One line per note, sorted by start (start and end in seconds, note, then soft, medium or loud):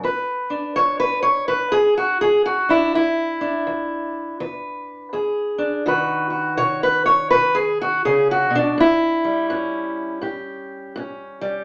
0.03 0.71 E2 medium
0.03 0.75 B4 medium
0.50 2.68 D4 soft
0.76 1.44 E2 medium
0.76 0.99 C#5 medium
1.00 1.22 B4 loud
1.23 1.47 C#5 medium
1.48 2.16 E2 medium
1.48 1.73 B4 medium
1.72 1.97 G#4 medium
1.97 2.21 F#4 medium
2.21 2.90 E2 medium
2.21 2.45 G#4 medium
2.46 2.70 F#4 medium
2.69 2.92 D4 soft
2.69 2.94 E4 medium
2.94 3.62 E2 medium
2.94 4.40 E4 medium
3.41 5.57 D4 soft
3.67 4.35 E2 medium
4.40 5.08 E2 medium
4.40 5.83 B4 soft
5.13 5.81 E2 medium
5.13 5.83 G#4 soft
5.58 5.83 D4 soft
5.86 6.53 B2 medium
5.86 8.05 D#3 medium
5.86 6.29 F#4 medium
5.86 6.57 B4 medium
6.30 7.54 F#4 soft
6.57 7.26 B2 medium
6.57 6.83 C#5 medium
6.83 7.05 B4 medium
7.06 7.30 C#5 medium
7.31 7.99 B2 medium
7.31 7.56 B4 loud
7.55 7.80 G#4 medium
7.81 8.05 F#4 medium
8.05 8.50 C#3 medium
8.05 8.30 G#4 medium
8.31 8.55 F#4 medium
8.50 8.77 B2 medium
8.55 8.79 D4 medium
8.78 9.45 A2 medium
8.78 10.22 E4 loud
9.24 11.40 G3 soft
9.50 10.18 A2 medium
9.50 10.96 C#4 medium
10.21 10.90 A2 medium
10.21 11.64 G4 soft
10.96 11.64 A2 medium
10.96 11.64 C#4 soft
11.41 11.64 G3 soft